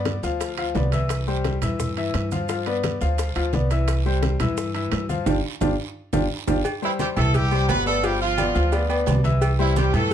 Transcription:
Already playing: upright bass G2, grand piano B3 B4 D5
0.05 high bongo, high conga, high timbale, short guiro, maracas
0.22 upright bass D2, grand piano F3 F4 F5, high bongo, high conga, short guiro, maracas
0.40 high bongo, high conga, high timbale, long guiro, maracas
0.57 grand piano F3 F4 F5, high conga, high timbale, maracas
0.75 upright bass C2, grand piano B3 B4 D5, high bongo, low bongo, high conga, low timbale, short guiro, maracas
0.92 grand piano E3 E4 E5, high bongo, high conga, high timbale, short guiro, maracas
1.09 high bongo, high timbale, long guiro, maracas
1.27 grand piano G3 G4 C5, high bongo, high conga, maracas
1.44 high bongo, high conga, high timbale, short guiro, maracas
1.62 upright bass G2, grand piano E3 E4 E5, high bongo, high conga, low conga, high timbale, short guiro, maracas
1.79 high bongo, high conga, low conga, long guiro, maracas
1.97 grand piano E3 E4 E5, high conga, high timbale, maracas
2.14 upright bass G2, high bongo, low bongo, high conga, high timbale, short guiro, maracas
2.31 grand piano F3 F4 F5, high bongo, high conga, short guiro, maracas
2.49 grand piano F3 F4 F5, high bongo, high conga, high timbale, long guiro, maracas
2.66 grand piano B3 B4 D5, high bongo, high conga, high timbale, maracas
2.83 high bongo, high conga, high timbale, short guiro, maracas
3.01 upright bass D2, grand piano F3 F4 F5, high bongo, high conga, short guiro, maracas
3.18 high bongo, high conga, high timbale, long guiro, maracas
3.36 upright bass D2, grand piano F3 F4 F5, high conga, high timbale, maracas
3.53 upright bass C2, grand piano B3 B4 D5, high bongo, low bongo, high conga, short guiro, maracas
3.70 grand piano E3 E4 E5, high bongo, high timbale, short guiro, maracas
3.88 high bongo, high conga, high timbale, long guiro, maracas
4.05 grand piano G3 G4 C5, high bongo, high conga, maracas
4.23 high bongo, high conga, high timbale, short guiro, maracas
4.40 upright bass G2, grand piano E3 E4 E5, high bongo, high conga, low conga, high timbale, short guiro, maracas
4.57 high bongo, high conga, long guiro, maracas
4.74 grand piano E3 E4 E5, high conga, high timbale, maracas
4.92 upright bass G2, high bongo, low bongo, high conga, high timbale, low timbale, short guiro, maracas
5.09 grand piano F3 F4 F5, high bongo, high conga, short guiro, maracas
5.26 upright bass G1, grand piano D4 F4 G4, low bongo, high conga, high timbale, long guiro, maracas
5.61 upright bass G1, grand piano D4 F4 G4, low bongo, high conga, high timbale, long guiro, maracas
6.13 upright bass G1, grand piano D4 F4 G4, low bongo, high conga, high timbale, long guiro, maracas
6.48 upright bass G1, grand piano D4 F4 G4, low bongo, high conga, high timbale, maracas
6.65 cowbell, high conga, low agogo, long guiro, maracas
6.82 horn section E3 E4, grand piano G3 G4 C5, high conga, maracas
6.99 grand piano G3 G4 C5, horn section G3 G4, cowbell, high conga, low timbale, low agogo, short guiro, maracas
7.16 upright bass C2, grand piano E3 E4 E5, horn section A3 A4, cowbell, high conga, low conga, low agogo, short guiro, maracas
7.34 horn section G3 G4, cowbell, high conga, low conga, long guiro, maracas
7.51 grand piano G3 G4 C5, high conga, low agogo, maracas
7.69 upright bass G1, horn section B3 B4, cowbell, high conga, low timbale, low agogo, short guiro, maracas
7.86 horn section A3 A4, grand piano B3 B4 D5, cowbell, high conga, short guiro, maracas
8.03 grand piano F3 F4 F5, horn section G3 G4, cowbell, high conga, low agogo, long guiro, maracas
8.20 horn section F3 F4, high conga, maracas
8.37 grand piano B3 B4 D5, cowbell, high conga, low timbale, low agogo, short guiro, maracas
8.55 upright bass D2, grand piano F3 F4 F5, cowbell, short guiro, maracas
8.72 grand piano B3 B4 D5, cowbell, high conga, low agogo, long guiro, maracas
8.89 grand piano B3 B4 D5, high conga, low agogo, maracas
9.06 upright bass C2, cowbell, high conga, low timbale, low agogo, short guiro, maracas
9.24 grand piano E3 E4 E5, cowbell, high conga, short guiro, maracas
9.41 cowbell, low agogo, long guiro, maracas
9.59 horn section E3 E4, grand piano G3 G4 C5, maracas
9.76 grand piano G3 G4 C5, horn section G3 G4, cowbell, high conga, low timbale, low agogo, short guiro, maracas
9.93 upright bass G2, grand piano E3 E4 E5, horn section A3 A4, cowbell, high conga, low conga, low agogo, short guiro, maracas

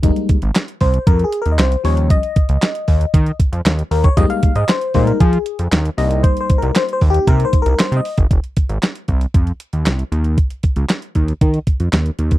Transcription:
0.02 analog synth bass F1, fm electric piano G3 G#3 A#3 D#4, kick, closed hi-hat
0.16 closed hi-hat
0.29 kick, closed hi-hat
0.42 analog synth bass G#1, closed hi-hat
0.55 snare, clap, closed hi-hat
0.68 closed hi-hat
0.81 analog synth bass C2, fm electric piano C5, kick, open hi-hat
0.94 closed hi-hat
1.07 analog synth bass F2, fm electric piano A#4, kick, closed hi-hat
1.19 closed hi-hat
1.24 fm electric piano G#4
1.32 closed hi-hat
1.42 fm electric piano A#4, closed hi-hat
1.46 analog synth bass D#2
1.52 fm electric piano D#5
1.59 analog synth bass C2, fm electric piano C5, snare, clap, closed hi-hat
1.72 closed hi-hat
1.84 analog synth bass D#2, fm electric piano F3 G3 C#4 C#5, open hi-hat
1.97 closed hi-hat
2.10 fm electric piano D#5, kick, closed hi-hat
2.23 closed hi-hat
2.36 kick, closed hi-hat
2.49 analog synth bass C#2, closed hi-hat
2.62 snare, clap, closed hi-hat
2.75 closed hi-hat
2.88 analog synth bass D#2, kick, open hi-hat
3.01 closed hi-hat
3.14 analog synth bass D#3, kick, closed hi-hat
3.26 closed hi-hat
3.40 kick, closed hi-hat
3.53 analog synth bass F2, closed hi-hat
3.65 analog synth bass D#2, snare, clap, closed hi-hat
3.79 closed hi-hat
3.91 analog synth bass D#2, fm electric piano A#4, open hi-hat
4.04 fm electric piano C#5, kick, closed hi-hat
4.16 analog synth bass F2, fm electric piano G3 G#3 A#3 D#4 D#5, kick, closed hi-hat
4.30 fm electric piano F5, closed hi-hat
4.43 kick, closed hi-hat
4.55 analog synth bass G#2, fm electric piano D#5, closed hi-hat
4.69 fm electric piano C5, snare, clap, closed hi-hat
4.81 closed hi-hat
4.94 analog synth bass A#2, fm electric piano G3 G#3 A#3 D#4 C5, kick, open hi-hat
5.07 fm electric piano A#4, closed hi-hat
5.20 analog synth bass F3, fm electric piano G#4, kick, closed hi-hat
5.33 closed hi-hat
5.46 closed hi-hat
5.59 analog synth bass F2, closed hi-hat
5.72 analog synth bass D#2, snare, clap, closed hi-hat
5.85 closed hi-hat
5.97 analog synth bass C2, fm electric piano G3 A#3 D#4 D#5, open hi-hat
6.11 closed hi-hat
6.23 fm electric piano C5, kick, closed hi-hat
6.37 fm electric piano C5, closed hi-hat
6.50 kick, closed hi-hat
6.58 fm electric piano A#4
6.62 analog synth bass C2, closed hi-hat
6.75 fm electric piano C5, snare, clap, closed hi-hat
6.89 closed hi-hat
6.93 fm electric piano C5
7.01 analog synth bass D#2, kick, open hi-hat
7.10 fm electric piano G4
7.14 closed hi-hat
7.27 analog synth bass C3, fm electric piano A#4, kick, closed hi-hat
7.40 closed hi-hat
7.45 fm electric piano C5
7.53 kick, closed hi-hat
7.62 analog synth bass C2, fm electric piano A#4, closed hi-hat
7.79 fm electric piano C5, snare, clap, closed hi-hat
7.92 analog synth bass C3, closed hi-hat
7.97 fm electric piano D#5
8.05 open hi-hat
8.18 analog synth bass G1, kick, closed hi-hat
8.31 analog synth bass F1, kick, closed hi-hat
8.44 closed hi-hat
8.57 kick, closed hi-hat
8.69 analog synth bass G#1, closed hi-hat
8.83 snare, clap, closed hi-hat
8.95 closed hi-hat
9.08 analog synth bass C2, kick, closed hi-hat
9.21 closed hi-hat
9.34 analog synth bass F2, kick, closed hi-hat
9.47 closed hi-hat
9.60 closed hi-hat
9.73 analog synth bass D#2, closed hi-hat
9.86 analog synth bass C2, snare, clap, closed hi-hat
9.99 closed hi-hat
10.12 analog synth bass D#2, closed hi-hat
10.24 closed hi-hat
10.38 kick, closed hi-hat
10.50 closed hi-hat
10.63 kick, closed hi-hat
10.76 analog synth bass C#2, closed hi-hat
10.89 snare, clap, closed hi-hat
11.02 closed hi-hat
11.15 analog synth bass D#2, kick, closed hi-hat
11.28 closed hi-hat
11.41 analog synth bass D#3, kick, closed hi-hat
11.54 closed hi-hat
11.67 kick, closed hi-hat
11.80 analog synth bass F2, closed hi-hat
11.93 analog synth bass D#2, snare, clap, closed hi-hat
12.06 closed hi-hat
12.19 analog synth bass D#2, closed hi-hat
12.31 kick, closed hi-hat

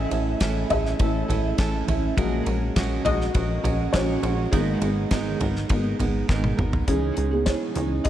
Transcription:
Already playing: steel-string acoustic guitar A2 E3 A3 C#4 E4, felt piano E3 A3 C#4 A4 E5
0.10 analog synth bass A1, steel-string acoustic guitar A3 C#4 E4 A4, ride
0.40 analog synth bass A1, steel-string acoustic guitar A2 E3 A3 C#4 E4 A4, kick, snare, ride
0.69 analog synth bass A1, steel-string acoustic guitar A3 C#4 E4 A4, felt piano G#4 E5, floor tom, ride
0.86 snare
0.99 analog synth bass A1, felt piano E3 A3 C#4, steel-string acoustic guitar A3 C#4 E4 A4, kick, ride
1.28 analog synth bass A1, steel-string acoustic guitar A3 C#4 E4 A4, floor tom, ride
1.58 analog synth bass A1, steel-string acoustic guitar A2 E3 A3 C#4 E4 A4, kick, snare, ride
1.87 analog synth bass A1, steel-string acoustic guitar A3 C#4 E4 A4, floor tom, ride
2.17 analog synth bass A#1, steel-string acoustic guitar A#2 F#3 G#3 C#4 F#4 A#4, felt piano F#3 G#3 A#3, kick, ride
2.46 analog synth bass A#1, steel-string acoustic guitar G#3 C#4 F#4 A#4, ride
2.76 analog synth bass A#1, steel-string acoustic guitar A#2 F#3 G#3 C#4 F#4 A#4, kick, snare, ride
3.05 analog synth bass A#1, steel-string acoustic guitar G#3 C#4 F#4 A#4, felt piano F#4 D#5, floor tom, ride
3.21 snare
3.34 analog synth bass A#1, steel-string acoustic guitar G#3 C#4 F#4 A#4, kick, ride
3.63 analog synth bass A#1, steel-string acoustic guitar G#3 C#4 F#4 A#4, floor tom, ride
3.93 analog synth bass A#1, steel-string acoustic guitar A#2 F#3 G#3 C#4 F#4 A#4, felt piano F#4 C#5, kick, snare, ride
4.22 analog synth bass A#1, steel-string acoustic guitar G#3 C#4 F#4 A#4, ride
4.51 analog synth bass G#1, steel-string acoustic guitar G#2 D#3 G#3 B3 D#4 A#4, felt piano G#3 A#3 B3 G#4, kick, ride
4.81 analog synth bass G#1, steel-string acoustic guitar G#3 B3 D#4 A#4, ride
5.11 analog synth bass G#1, steel-string acoustic guitar G#2 D#3 G#3 B3 D#4 A#4, kick, snare, ride
5.40 analog synth bass G#1, steel-string acoustic guitar G#3 B3 D#4 A#4, floor tom, ride
5.56 snare
5.69 analog synth bass G#1, steel-string acoustic guitar G#3 B3 D#4 A#4, felt piano G#3 A#3 B3, kick, ride
5.99 analog synth bass G#1, steel-string acoustic guitar G#3 B3 D#4 A#4, floor tom, ride
6.28 analog synth bass G#1, steel-string acoustic guitar G#2 D#3 G#3 B3 D#4 A#4, kick, snare
6.44 high tom
6.57 analog synth bass G#1, steel-string acoustic guitar G#3 B3 D#4 A#4, mid tom
6.73 floor tom
6.87 analog synth bass C#2, steel-string acoustic guitar C#3 E3 G#3 C#4 D#4 G#4, felt piano E3 C#4 D#4 G#4, kick, closed hi-hat
7.17 analog synth bass C#2, steel-string acoustic guitar G#3 C#4 D#4 G#4, closed hi-hat
7.31 felt piano B3 G#4
7.46 steel-string acoustic guitar G#3 C#4 D#4 G#4, felt piano E4 C#5, kick, snare, closed hi-hat
7.75 analog synth bass C#2, felt piano E3 C#4 D#4, steel-string acoustic guitar G#3 C#4 D#4 G#4, closed hi-hat, floor tom
8.04 analog synth bass C#2, steel-string acoustic guitar C#3 E3 G#3 C#4 D#4, felt piano G#4 D#5, kick, closed hi-hat

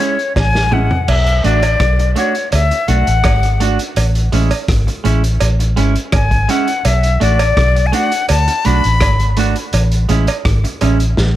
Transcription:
Already playing: flute C#5
0.00 clean electric guitar G#3 C#4 E4, closed hi-hat
0.19 closed hi-hat
0.36 fingered electric bass A1, flute G#5, kick, snare, cowbell
0.55 snare
0.71 clean electric guitar G#3 C#4 E4, flute F#5, mid tom
0.91 floor tom
1.08 fingered electric bass B1, flute E5, crash, cowbell
1.26 closed hi-hat
1.44 fingered electric bass A1, clean electric guitar A3 D4 F#4, flute D5, closed hi-hat
1.62 closed hi-hat, cowbell
1.80 fingered electric bass B1, kick, cross-stick, closed hi-hat
1.99 muted clean electric guitar stroke, closed hi-hat
2.16 clean electric guitar A3 D4 F#4, flute C#5, closed hi-hat
2.35 closed hi-hat
2.52 fingered electric bass D2, flute E5, closed hi-hat, cowbell
2.71 muted clean electric guitar stroke, closed hi-hat
2.88 fingered electric bass B1, clean electric guitar A3 D4 F#4, flute F#5, closed hi-hat
3.07 fingered electric bass A1, closed hi-hat
3.24 fingered electric bass G#1, kick, cross-stick, closed hi-hat, cowbell
3.43 closed hi-hat
3.60 clean electric guitar A3 D4 F#4, closed hi-hat
3.79 closed hi-hat
3.96 fingered electric bass A1, closed hi-hat, cowbell
4.15 closed hi-hat
4.32 fingered electric bass A1, clean electric guitar G#3 C#4 E4, closed hi-hat
4.51 closed hi-hat, cowbell
4.68 fingered electric bass G#1, kick, cross-stick, closed hi-hat
4.87 muted clean electric guitar stroke, closed hi-hat
5.04 fingered electric bass A1, clean electric guitar G#3 C#4 E4, closed hi-hat
5.24 closed hi-hat
5.40 fingered electric bass A1, closed hi-hat, cowbell
5.60 muted clean electric guitar stroke, closed hi-hat
5.76 fingered electric bass G#1, clean electric guitar G#3 C#4 E4, closed hi-hat
5.96 closed hi-hat
6.12 fingered electric bass G#1, flute G#5, kick, cross-stick, closed hi-hat, cowbell
6.31 kick, closed hi-hat
6.49 clean electric guitar G#3 C#4 E4, flute F#5, closed hi-hat
6.68 closed hi-hat
6.85 fingered electric bass B1, flute E5, closed hi-hat, cowbell
7.03 closed hi-hat
7.20 fingered electric bass A1, clean electric guitar A3 D4 F#4, flute D5, closed hi-hat
7.39 closed hi-hat, cowbell
7.57 fingered electric bass B1, kick, cross-stick, closed hi-hat
7.76 muted clean electric guitar stroke, closed hi-hat
7.86 flute G#5
7.92 clean electric guitar A3 D4 F#4, flute F#5, closed hi-hat
8.12 closed hi-hat
8.29 fingered electric bass D2, flute A5, closed hi-hat, cowbell
8.48 muted clean electric guitar stroke, closed hi-hat
8.65 fingered electric bass B1, clean electric guitar A3 D4 F#4, flute B5, closed hi-hat
8.84 fingered electric bass A1, closed hi-hat
9.00 fingered electric bass G#1, kick, cross-stick, closed hi-hat, cowbell
9.20 closed hi-hat
9.37 clean electric guitar A3 D4 F#4, closed hi-hat
9.56 closed hi-hat
9.73 fingered electric bass A1, closed hi-hat, cowbell
9.92 closed hi-hat
10.09 fingered electric bass A1, clean electric guitar G#3 C#4 E4, closed hi-hat
10.27 closed hi-hat, cowbell
10.45 fingered electric bass G#1, kick, cross-stick, closed hi-hat
10.64 muted clean electric guitar stroke, closed hi-hat
10.81 fingered electric bass A1, clean electric guitar G#3 C#4 E4, closed hi-hat, cowbell
11.00 closed hi-hat
11.17 fingered electric bass A1, snare

